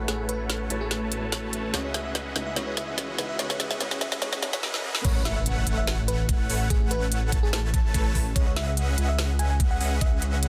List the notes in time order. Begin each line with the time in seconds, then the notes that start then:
Already playing: A3 C#4 E4 F#4 B4 C#5, riser
0.06 A1 A3 E4 F#4 G#4 A4 B4 C#5 F#5, snare, closed hi-hat
0.29 B4, closed hi-hat
0.50 snare, closed hi-hat
0.69 A1 A3 E4 F#4 A4 B4 C#5 A5, closed hi-hat
0.81 G#4
0.91 G#4, snare, closed hi-hat
1.12 closed hi-hat
1.20 A3 E4 F#4 B4 C#5
1.32 snare, closed hi-hat
1.53 closed hi-hat
1.72 C#2 C#3 E3 G#3 B3 C#4 E4 F#4 G#4 B4 C#5 D#5 E5 F#5, snare, closed hi-hat
1.84 C#5
1.94 E5, snare, closed hi-hat
2.05 E5
2.15 snare, closed hi-hat
2.35 C#2 C#3 G#3 C#4 D#4 E4 F#4 G#4 B4 D#5 E5 F#5, snare, closed hi-hat
2.46 E5
2.54 C#2 C#3 G#3 C#4 E4 F#4 G#4 B4 C#5 D#5 E5 F#5, snare, closed hi-hat
2.58 B4
2.67 C#5
2.77 E5, snare, closed hi-hat
2.88 E5
2.98 snare, closed hi-hat
3.17 C#2 C#3 G#3 C#4 D#4 E4 F#4 G#4 B4 D#5 E5 F#5, snare, closed hi-hat
3.29 E5
3.37 C#2 C#3 G#3 C#4 E4 F#4 G#4 B4 C#5 D#5 E5 F#5, snare, closed hi-hat
3.50 C#5, snare
3.60 E5, snare, closed hi-hat
3.71 E5, snare
3.78 C#2 C#3 G#3 C#4 E4 F#4 G#4 B4 C#5 D#5 E5 F#5, snare, closed hi-hat
3.91 C#5, snare
4.01 E5, snare, closed hi-hat
4.12 E5, snare
4.20 C#2 C#3 G#3 C#4 D#4 E4 F#4 G#4 B4 C#5 D#5 E5 F#5, snare, closed hi-hat
4.24 B4
4.33 C#5, snare
4.41 C#2 C#3 G#3 C#4 D#4 E4 F#4 G#4 B4 C#5 D#5 E5 F#5, snare, closed hi-hat
4.45 B4
4.53 C#5, snare
4.63 C#4 G#4 B4 D#5 E5 F#5, snare
4.74 snare
4.84 C#4 G#4 B4 D#5 E5 F#5
4.95 snare
5.05 A1 A3 A4 B4 C#5 F#5, kick, closed hi-hat, crash, impact
5.15 C#5
5.25 E5, snare, closed hi-hat
5.36 E5
5.46 closed hi-hat
5.67 A1 A3 A4 B4 C#5 F#5, closed hi-hat
5.78 E5
5.87 snare, closed hi-hat
6.08 B4, closed hi-hat
6.29 kick, closed hi-hat
6.50 A1 A3 A4 B4 C#5 F#5, open hi-hat
6.70 A3 G#4 B4 C#5 F#5, kick, closed hi-hat
6.91 B4, closed hi-hat
7.12 closed hi-hat
7.32 A1 A3 C#5 A5, kick, closed hi-hat
7.43 G#4
7.53 snare, closed hi-hat
7.74 kick, closed hi-hat
7.94 A1 A3 A4 B4 C#5 A5, kick, closed hi-hat
8.15 kick, open hi-hat
8.36 C#2 C#4 G#4 B4 C#5 D#5 E5 F#5, kick, closed hi-hat
8.47 C#5
8.56 E5, snare, closed hi-hat
8.67 E5
8.77 closed hi-hat
8.98 C#2 C#4 G#4 B4 D#5 E5 F#5, closed hi-hat
9.09 E5
9.19 snare, closed hi-hat
9.39 G#5, closed hi-hat
9.50 G#5
9.60 kick, closed hi-hat
9.71 F#5
9.81 C#2 C#4 G#4 B4 D#5 E5 F#5, open hi-hat
10.01 C#2 E5 F#5, kick, closed hi-hat
10.22 closed hi-hat
10.43 closed hi-hat